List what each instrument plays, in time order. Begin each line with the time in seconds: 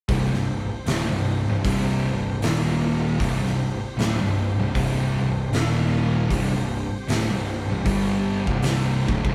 0.09 picked electric bass C1, distorted electric guitar C2 G2, tonewheel organ C3 G3 C4, kick, open hi-hat
0.32 picked electric bass C1, distorted electric guitar C2 G2, snare
0.86 picked electric bass D1, distorted electric guitar D2 A2, snare, open hi-hat
1.09 picked electric bass C1, distorted electric guitar C2 G2
1.48 picked electric bass C1, distorted electric guitar C2 G2
1.65 picked electric bass C1, distorted electric guitar C2 G2 C3, kick, open hi-hat
2.09 picked electric bass C1, distorted electric guitar C2 G2
2.42 picked electric bass D#1, distorted electric guitar D#2 A#2 D#3, tonewheel organ D#3 A#3 F4, snare, open hi-hat
3.20 picked electric bass C1, distorted electric guitar C2 G2, tonewheel organ C3 G3 C4, kick, open hi-hat
3.43 picked electric bass C1, distorted electric guitar C2 G2, snare
3.97 picked electric bass D1, distorted electric guitar D2 A2, snare, open hi-hat
4.20 picked electric bass C1, distorted electric guitar C2 G2
4.58 picked electric bass C1, distorted electric guitar C2 G2
4.75 picked electric bass C1, distorted electric guitar C2 G2 C3, kick, open hi-hat
5.20 picked electric bass C1, distorted electric guitar C2 G2
5.52 picked electric bass D#1, distorted electric guitar D#2 A#2 D#3, tonewheel organ D#3 A#3 F4, snare, open hi-hat
6.30 picked electric bass C1, distorted electric guitar C2 G2, tonewheel organ C3 G3 C4, kick, open hi-hat
6.52 picked electric bass C1, distorted electric guitar C2 G2
7.08 picked electric bass D1, distorted electric guitar D2 A2, snare, open hi-hat
7.31 picked electric bass C1, distorted electric guitar C2 G2
7.69 picked electric bass C1, distorted electric guitar C2 G2
7.85 picked electric bass G1, distorted electric guitar G2 D3 G3, kick, open hi-hat
8.47 picked electric bass C1, distorted electric guitar C2 G2 C3, kick
8.63 snare, open hi-hat
9.08 picked electric bass D1, distorted electric guitar D2 A2, kick
9.24 picked electric bass C1, distorted electric guitar C2 G2, kick